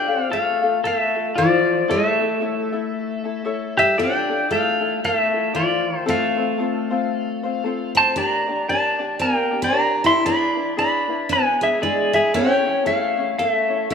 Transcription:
Already playing: steel-string acoustic guitar D4, pedal steel guitar D5 G5
0.08 ukulele F4 A4 F5
0.29 steel-string acoustic guitar A3, ukulele F4 A4 D5 F5, pedal steel guitar A4
0.34 pedal steel guitar F5
0.62 ukulele F4 A4 F5
0.84 steel-string acoustic guitar A3, pedal steel guitar A4 E5
1.15 ukulele F4 A4 F5
1.36 steel-string acoustic guitar F3, pedal steel guitar F4 D5, ukulele F4 A4 D5 F5
1.88 steel-string acoustic guitar A3, ukulele E4 A4 C#5 E5, pedal steel guitar A4 E5
2.20 ukulele E4 A4 E5
2.40 ukulele E4 A4 C#5 E5
2.72 ukulele E4 A4 E5
3.24 ukulele E4 A4 E5
3.45 ukulele E4 A4 C#5 E5
3.77 steel-string acoustic guitar G3, pedal steel guitar G4 E5
3.97 steel-string acoustic guitar D4, ukulele E4 F4 A4 D5, pedal steel guitar D5 G5
4.29 ukulele E4 F4 A4
4.48 steel-string acoustic guitar A3, ukulele E4 F4 A4 D5, pedal steel guitar A4
4.52 pedal steel guitar F5
4.81 ukulele E4 F4 A4
5.04 steel-string acoustic guitar A3, pedal steel guitar A4 E5
5.33 ukulele E4 F4 A4
5.54 steel-string acoustic guitar F3, ukulele F4 A4 D5, pedal steel guitar F4 D5
5.98 pedal steel guitar C5
6.06 steel-string acoustic guitar A3, ukulele C4 F4 A4 C5, pedal steel guitar A4
6.10 pedal steel guitar F5
6.37 ukulele C4 F4 C5
6.58 ukulele C4 F4 A4 C5
6.90 ukulele C4 F4 C5
7.43 ukulele C4 F4 C5
7.64 ukulele C4 F4 A4 C5
7.95 steel-string acoustic guitar C4, pedal steel guitar C5 A5
8.16 steel-string acoustic guitar D4, ukulele D4 G4 A#4 D5, pedal steel guitar D5 A#5
8.48 ukulele D4 G4 D5
8.68 ukulele D4 G4 A#4 D5, steel-string acoustic guitar D4, pedal steel guitar D5 A5
8.99 ukulele D4 G4 D5
9.19 steel-string acoustic guitar A#3, pedal steel guitar A#4 G5
9.51 ukulele D4 G4 D5
9.62 steel-string acoustic guitar D4, pedal steel guitar D5 A#5
9.72 ukulele D4 G4 A#4 D5
10.04 steel-string acoustic guitar E4, pedal steel guitar E5 C6
10.25 ukulele D4 E4 G#4 B4, steel-string acoustic guitar D4, pedal steel guitar D5 B5
10.56 ukulele D4 E4 B4
10.77 ukulele D4 E4 G#4 B4, steel-string acoustic guitar D4, pedal steel guitar D5 B5
11.09 ukulele D4 E4 B4
11.29 steel-string acoustic guitar B3, pedal steel guitar B4 G#5
11.61 steel-string acoustic guitar G#3, ukulele D4 E4 B4, pedal steel guitar G#4 E5
11.81 steel-string acoustic guitar G#3, ukulele D4 E4 G#4 B4, pedal steel guitar G#4 D5
12.13 steel-string acoustic guitar G#3, pedal steel guitar G#4 E5
12.34 steel-string acoustic guitar C#4, ukulele C#4 E4 A4 C#5, pedal steel guitar C#5 G5
12.65 ukulele C#4 E4 C#5
12.85 steel-string acoustic guitar A3, ukulele C#4 E4 A4 C#5, pedal steel guitar A4 F5
13.17 ukulele C#4 E4 C#5
13.38 steel-string acoustic guitar A3, pedal steel guitar A4 F5
13.49 pedal steel guitar E5
13.69 ukulele C#4 E4 C#5
13.90 steel-string acoustic guitar A3, ukulele C#4 E4 A4

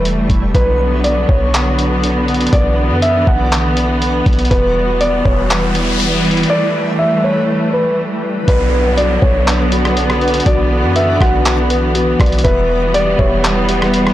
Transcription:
Already playing: 808-style bass E1, string section E3 G3 A3, synth texture G3 E4 C#6
0.05 closed hi-hat
0.30 808-style bass E1, kick, closed hi-hat
0.54 808-style bass B1, string section D3 F#3 B3, synth texture B3 F#4 D5, felt piano B4, kick, closed hi-hat
1.04 felt piano D5, closed hi-hat
1.29 808-style bass B1, felt piano C#5, kick
1.54 clap, closed hi-hat
1.79 closed hi-hat
2.04 closed hi-hat
2.28 closed hi-hat
2.34 closed hi-hat
2.41 closed hi-hat
2.47 closed hi-hat
2.53 808-style bass B1, string section E3, felt piano D5, kick, closed hi-hat
2.90 808-style bass F#2
3.02 felt piano E5, closed hi-hat
3.27 808-style bass B1, felt piano F#5, kick
3.52 clap, closed hi-hat
3.77 closed hi-hat
4.02 closed hi-hat
4.26 808-style bass B1, kick, closed hi-hat
4.33 closed hi-hat
4.39 closed hi-hat
4.45 closed hi-hat
4.51 808-style bass E1, string section E3 G3, synth texture G3 E4 B4, felt piano B4, kick, closed hi-hat, noise sweep
5.01 felt piano D5, closed hi-hat
5.25 808-style bass E1, felt piano C#5, kick
5.50 clap, closed hi-hat
5.75 closed hi-hat
6.00 closed hi-hat
6.25 closed hi-hat
6.31 closed hi-hat
6.37 closed hi-hat
6.43 closed hi-hat
6.49 string section A3, felt piano D5
6.99 felt piano E5
7.24 felt piano C#5
7.73 felt piano B4
8.48 808-style bass B1, string section D3 F#3 B3, synth texture B3 F#4 D5, felt piano B4, synth keys D5, kick, closed hi-hat, downlifter
8.97 synth keys F#4, felt piano D5, closed hi-hat
9.22 808-style bass B1, felt piano C#5, synth keys D5, kick
9.47 clap, closed hi-hat
9.72 synth keys F#4, closed hi-hat
9.85 cross-stick
9.97 closed hi-hat
10.10 cross-stick
10.21 synth keys B4, closed hi-hat
10.28 closed hi-hat
10.34 closed hi-hat
10.40 closed hi-hat
10.46 808-style bass B1, string section E3, synth keys F#4, felt piano D5, kick, closed hi-hat
10.84 808-style bass F#2
10.96 synth keys B4, felt piano E5, closed hi-hat
11.21 808-style bass B1, synth keys F#4, felt piano F#5, kick, cross-stick
11.45 clap, closed hi-hat
11.70 synth keys B4, closed hi-hat
11.95 synth keys F#4, closed hi-hat
12.20 808-style bass B1, synth keys D5, kick, cross-stick, closed hi-hat
12.26 closed hi-hat
12.32 closed hi-hat
12.39 closed hi-hat
12.44 808-style bass E1, synth texture G3 E4 B4, string section G3 B3, felt piano B4, synth keys E5, kick, closed hi-hat
12.94 synth keys G4, felt piano D5, closed hi-hat
13.19 808-style bass E1, felt piano C#5, synth keys E5, kick
13.44 clap, closed hi-hat
13.69 synth keys G4, closed hi-hat
13.82 cross-stick
13.94 closed hi-hat
14.07 cross-stick

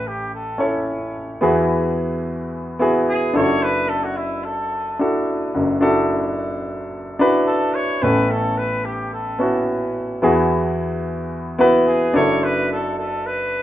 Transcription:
Already playing: grand piano A1 A2 C#4 E4 A4 B4
0.07 trumpet G4
0.34 trumpet A4
0.58 grand piano C#4 E4 A4 C#5
1.41 grand piano E2 E3 B3 E4 F#4 G#4
2.79 grand piano B3 E4 F#4 G#4
3.09 trumpet G#4
3.34 grand piano F#1 F#2 D4 E4 F4 A4, trumpet C#5
3.41 grand piano F#4
3.63 trumpet B4
3.89 trumpet A4
4.04 trumpet F#4
4.16 trumpet E4
4.45 trumpet A4
4.99 grand piano D4 E4 F#4 A4
5.55 grand piano F#1 F#2
5.81 grand piano D4 E4 F#4 A4
7.19 grand piano D4 E4 F#4 B4
7.47 trumpet A4
7.74 trumpet C#5
8.02 grand piano A1 A2 B3 C#4 E4 A4, trumpet B4
8.30 trumpet A4
8.58 trumpet B4
8.85 trumpet G4
9.13 trumpet A4
9.39 grand piano B3 C#4 E4 F#4
10.22 grand piano E2 E3 B3 E4 F#4 G#4
11.59 grand piano B3 E4 F#4 B4
11.87 trumpet G#4
12.14 grand piano F#1 F#2 D4 E4 F#4 A4, trumpet C#5
12.44 trumpet B4
12.72 trumpet A4
12.99 trumpet A4
13.26 trumpet B4

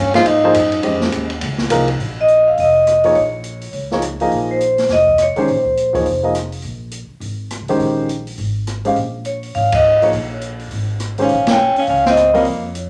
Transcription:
Already playing: upright bass G2, tenor saxophone C#4
0.14 grand piano F3 A#3 D#4 G#4 C5, tenor saxophone F4, snare, ride
0.26 tenor saxophone D#4, ride
0.44 grand piano F3 A#3 D#4 G#4 C5
0.54 upright bass F#2, hi-hat pedal, ride
0.72 ride
0.83 upright bass F2, grand piano G#3 C#4 G4 C5 D#5, ride
1.01 snare
1.12 upright bass D#2, hi-hat pedal, ride
1.30 ride
1.41 upright bass C#2, ride
1.58 snare
1.70 upright bass C2, grand piano F3 A#3 D#4 G#4 A#4, hi-hat pedal, ride
1.88 ride
2.00 upright bass A#1, open hi-hat
2.21 vibraphone D#5
2.28 closed hi-hat
2.48 vibraphone F5
2.57 upright bass F1, vibraphone D#5, open hi-hat
2.87 cross-stick, closed hi-hat
3.04 grand piano F3 A#3 D#4 G#4 C#5, open hi-hat
3.15 upright bass A#1, vibraphone C#5, open hi-hat
3.44 closed hi-hat
3.61 open hi-hat
3.73 upright bass C#2, open hi-hat
3.91 grand piano F3 A#3 D#4 G#4 C#5, snare
4.02 cross-stick, closed hi-hat
4.20 grand piano F3 A#3 D#4 G#4 D#5, open hi-hat
4.31 upright bass A#1, open hi-hat
4.51 vibraphone C5
4.61 closed hi-hat
4.78 snare, open hi-hat
4.89 upright bass F1, vibraphone D#5, snare, open hi-hat
5.07 kick
5.18 cross-stick, closed hi-hat
5.22 vibraphone C#5
5.36 grand piano D#3 G#3 C#4 G4 C5, vibraphone C5, muted upright bass stroke, open hi-hat
5.48 upright bass A#1, open hi-hat
5.65 kick
5.77 closed hi-hat
5.93 upright bass G#1, grand piano F3 A#3 D#4 G#4 C#5, kick, open hi-hat
6.06 upright bass F1, open hi-hat
6.23 grand piano F3 A#3 D#4 G#4 D#5
6.35 cross-stick, closed hi-hat
6.52 open hi-hat
6.62 upright bass A#1, open hi-hat
6.91 closed hi-hat
7.09 muted upright bass stroke
7.20 upright bass G#1, open hi-hat
7.50 cross-stick, closed hi-hat
7.60 upright bass C#2
7.68 upright bass F2, grand piano D#3 G#3 C#4 G4 C5, open hi-hat
7.80 upright bass A#1, open hi-hat
8.09 closed hi-hat
8.27 open hi-hat
8.38 upright bass G#1, open hi-hat
8.67 cross-stick, closed hi-hat
8.85 grand piano G#3 C#4 G4 C5 F5, open hi-hat
8.96 upright bass A#1, open hi-hat
9.25 vibraphone C#5, closed hi-hat
9.43 open hi-hat
9.54 upright bass G#1, vibraphone F5, open hi-hat
9.72 vibraphone D#5, kick, ride
10.02 upright bass A1, grand piano F3 A#3 D#4 G#4 C#5, vibraphone C#5, open hi-hat
10.13 upright bass A#1, open hi-hat
10.41 closed hi-hat
10.59 open hi-hat
10.71 upright bass G#1, open hi-hat
11.00 cross-stick, closed hi-hat
11.18 grand piano D#3 G#3 C#4 G4 C5, tenor saxophone C#4, open hi-hat
11.24 vibraphone F5
11.29 upright bass A#1, open hi-hat
11.47 tenor saxophone C#4, snare, ride
11.51 vibraphone G5
11.76 tenor saxophone C#4, vibraphone F5, muted upright bass stroke, open hi-hat
11.87 upright bass C#2, tenor saxophone C#4, vibraphone F5, open hi-hat
12.06 tenor saxophone C4, vibraphone D#5, snare
12.17 cross-stick, closed hi-hat
12.33 grand piano G3 C4 F4 A#4 D#5, tenor saxophone A#3, vibraphone C#5, open hi-hat
12.45 upright bass F2, open hi-hat
12.75 closed hi-hat

